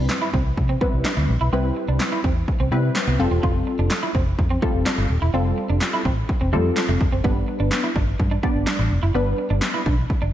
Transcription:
Already playing: G3 C4 E4 B4
0.09 muted clean electric guitar stroke, snare, clap
0.22 E4
0.33 C2 C4, kick
0.57 C3, muted clean electric guitar stroke, kick
0.69 C4
0.81 G3 B3 C4 E4 B4, kick
0.93 C2
1.05 D4, snare, clap
1.17 D2, muted clean electric guitar stroke
1.29 A#1
1.41 B1 E4
1.53 C2 G3 C4 E4 B4
1.76 muted clean electric guitar stroke
1.88 C2 D4
2.00 muted clean electric guitar stroke, snare, clap
2.12 E4
2.24 E2 C4, kick
2.48 muted clean electric guitar stroke, kick
2.60 C2 C4
2.72 C3 G3 B3 C4 E4 B4
2.95 snare, clap
3.07 C2 B3
3.19 F1 G3 C4 F4 A4, muted clean electric guitar stroke
3.31 E1 C4
3.43 F4, kick
3.67 muted clean electric guitar stroke
3.79 F1 D4
3.90 muted clean electric guitar stroke, snare, clap
4.03 E4
4.15 F1 C4, kick
4.39 F2, muted clean electric guitar stroke, kick
4.50 C4
4.62 G3 A3 C4 F4 A4, kick
4.74 F1
4.86 D4, snare, clap
4.98 G1, muted clean electric guitar stroke
5.10 D#1
5.22 E1 E4
5.34 F1 G3 C4 F4 A4
5.58 muted clean electric guitar stroke
5.70 F1 D4
5.81 muted clean electric guitar stroke, snare, clap
5.93 E4
6.05 A1 C4, kick
6.29 muted clean electric guitar stroke, kick
6.41 F1 C4
6.53 F2 G3 A3 C4 F4 A4
6.76 snare, clap
6.89 F1 A3
7.01 muted clean electric guitar stroke, kick
7.12 F#1 C4
7.24 G1 G3 B3 D4 B4, kick
7.48 muted clean electric guitar stroke
7.60 G1 D4
7.71 muted clean electric guitar stroke, snare, clap
7.84 E4
7.96 G1 D4, kick
8.20 G2, muted clean electric guitar stroke, kick
8.31 D4
8.43 G3 B3 D4 D5, kick
8.55 G1
8.67 D4, snare, clap
8.79 A1, muted clean electric guitar stroke
8.91 F1
9.03 F#1 E4
9.14 G1 G3 B3 D4 B4
9.38 muted clean electric guitar stroke
9.50 G1 D4
9.62 muted clean electric guitar stroke, snare, clap
9.74 E4
9.86 B1 D4, kick
10.10 muted clean electric guitar stroke, kick
10.22 G1 D4

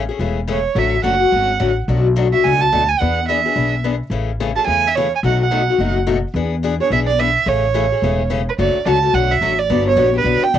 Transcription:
0.09 A3 C#4 G#4
0.19 E1 C#3 E3 A3 C#4 G#4
0.47 C#3 E3 A3 C#4 G#4 C#5
0.75 A1 D3 F#3 A3 C#4 F#4 E5
1.03 F#1 D3 F#3 A3 C#4 F#4 F#5
1.20 A3 C#4 F#4
1.31 G#1 D3 F#3 A3 C#4 F#4
1.59 A1 D3 F#3 A3 C#4 F#4
1.88 B1 B2 F#3 A3 D4 F#4
2.16 B2 F#3 A3 D4 F#4
2.32 A3 D4 F#4 E5
2.44 C#2 B2 F#3 A3 D4 F#4 G#5
2.61 A5
2.72 D2 B2 F#3 A3 D4 F#4
2.89 G#5
3.00 E2 E3 B3 D4 G#4 F#5
3.28 E3 B3 D4 G#4 E5
3.46 B3 D4 G#4
3.56 B1 E3 B3 D4 G#4
3.84 E3 B3 D4 G#4
4.10 A1 C#3 E3 A3 C#4 G#4
4.40 C#3 E3 A3 C#4 G#4
4.56 A3 C#4 G#4 A5
4.66 E2 C#3 E3 A3 C#4 G#4 G#5
4.87 E5
4.95 C#3 E3 A3 C#4 G#4 C#5
5.15 G#5
5.23 B1 B2 F#3 A3 D#4 F#4 F#5
5.42 F#5
5.51 B2 F#3 A3 D#4 F#4
5.70 A3 D#4 F#4
5.78 F#1 B2 F#3 A3 D#4 F#4
6.06 B2 F#3 A3 D#4 F#4
6.34 E2 E3 B3 D4 G#4
6.63 E3 B3 D4 G#4
6.80 B3 D4 G#4 C#5
6.90 B1 E3 B3 D4 G#4 E5
7.07 D5
7.19 E3 B3 D4 G#4 E5
7.46 A1 C#3 E3 A3 C#4 G#4 C#5
7.74 C#3 E3 A3 C#4 G#4
7.92 A3 C#4 G#4
8.02 E1 C#3 E3 A3 C#4 G#4
8.30 C#3 E3 A3 C#4 G#4
8.49 B4
8.58 F#1 D3 F#3 A3 C#4 F#4 D5
8.86 C#2 D3 F#3 A3 C#4 F#4 A5
9.02 A3 C#4 F#4
9.13 B1 D3 F#3 A3 C#4 F#4 F#5
9.32 E5
9.41 A1 D3 F#3 A3 C#4 F#4
9.59 D5
9.69 G1 D3 F#3 B3 D4 G4
9.88 C#5
9.96 A#1 D3 F#3 B3 D4 G4
10.14 B3 D4 G4
10.18 B4
10.24 B1 D3 F#3 B3 D4 G4
10.42 G5, muted upright bass stroke
10.54 C#2 D3 F#3 B3 D4 G4

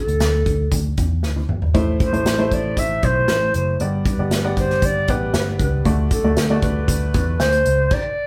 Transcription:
Already playing: A4
0.08 D2, closed hi-hat
0.20 D2, snare, closed hi-hat
0.46 D2, kick, closed hi-hat
0.72 D2, kick, closed hi-hat
0.97 E2, kick, closed hi-hat
1.23 D2, snare
1.36 high tom
1.49 G#1, mid tom
1.62 floor tom
1.74 A1 A2 A3 E4 C5, kick, closed hi-hat
2.00 C5, kick, closed hi-hat
2.13 A1 A3 E4 C5, closed hi-hat
2.25 A1, snare, closed hi-hat
2.38 A3 E4 C5
2.51 A1 D5, kick, closed hi-hat
2.77 A1 E5, kick, closed hi-hat
3.03 B1 C5, kick, closed hi-hat
3.28 A1, snare, closed hi-hat
3.54 F#1 C5, closed hi-hat
3.80 G1 G2 B3 G4 D5, closed hi-hat
4.05 B4, kick, closed hi-hat
4.18 G1 B3 G4 D5
4.31 G1, snare, closed hi-hat
4.44 B3 G4 D5
4.57 G1 C5, kick, closed hi-hat
4.70 snare
4.82 G1 D5, kick, closed hi-hat
5.08 A1 B3 G4 B4 D5, kick, closed hi-hat
5.34 G1, snare, closed hi-hat
5.59 C#2 B4, kick, closed hi-hat
5.85 D2 D3 A3 F#4 D5, kick, closed hi-hat
6.11 A4, kick, closed hi-hat
6.24 D2 A3 F#4 D5
6.37 D2, snare, closed hi-hat
6.50 A3 F#4 D5
6.62 D2 B4, kick, closed hi-hat
6.88 D2, kick, closed hi-hat
7.14 E2, kick, closed hi-hat
7.40 D2 C5, snare, closed hi-hat
7.52 closed hi-hat
7.66 C#2, closed hi-hat
7.91 D5, kick, crash

